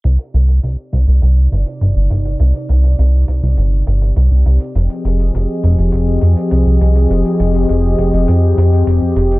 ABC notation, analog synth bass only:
X:1
M:4/4
L:1/16
Q:1/4=102
K:Cm
V:1 name="Analog synth bass" clef=bass
C,, z C,,2 C,, z C,, C,, C,,2 G,,, z G,,, G,,, G,,,2 | C,, z C,,2 C,,2 C,, C,, G,,,2 G,,,2 C,, C,, C,, z | F,,, z F,,,2 F,,, z F,,, F,,, F,,,2 F,, z C,, C,, C,,2 | F,,, z F,,,2 F,,,2 F,,, F,,, F,,2 F,,2 F,,, F,, F,,,2 |]